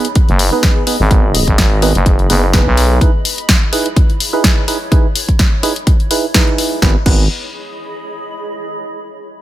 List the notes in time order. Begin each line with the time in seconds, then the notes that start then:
Already playing: D#4 G#4 D#5 B5
0.05 closed hi-hat
0.15 kick, closed hi-hat
0.29 F#1, closed hi-hat
0.39 open hi-hat
0.52 B3 D#4 G#4 B4
0.63 kick, snare, closed hi-hat
0.87 B3 D#4 G#4 B4, open hi-hat
1.00 G#1
1.11 B3 D#4 G#4 B4, kick, closed hi-hat
1.35 open hi-hat
1.48 G#1, kick, closed hi-hat
1.58 kick, snare, closed hi-hat
1.82 B3 D#4 G#4 B4, open hi-hat
1.95 F#1, closed hi-hat
2.06 kick, closed hi-hat
2.19 closed hi-hat
2.30 F#1 B3 D#4 G#4 B4, open hi-hat
2.53 B3 D#4 G#4 B4, kick, snare, closed hi-hat
2.67 B1
2.77 open hi-hat
3.01 D#4 E4 G#4 B4, kick, closed hi-hat
3.25 open hi-hat
3.29 C#5
3.38 closed hi-hat
3.49 kick, snare, closed hi-hat
3.72 D#4 E4 G#4 B4, open hi-hat
3.86 closed hi-hat
3.96 kick, closed hi-hat
4.10 closed hi-hat
4.20 open hi-hat
4.33 D#4 E4 G#4 B4
4.44 kick, snare, closed hi-hat
4.68 D#4 E4 G#4 B4, open hi-hat
4.92 D#4 E4 G#4 B4, kick, closed hi-hat
5.15 open hi-hat
5.29 kick, closed hi-hat
5.39 kick, snare, closed hi-hat
5.63 D#4 E4 G#4 B4, open hi-hat
5.76 closed hi-hat
5.87 kick, closed hi-hat
6.00 closed hi-hat
6.11 D#4 E4 G#4 B4, open hi-hat
6.34 D#4 E4 G#4 B4, kick, snare, closed hi-hat
6.48 closed hi-hat
6.58 open hi-hat
6.82 G#1 B3 D#4 G#4 B4, kick, snare
6.90 D#5
6.97 B5
7.06 G#1 B3 D#4 G#4 B4, kick, crash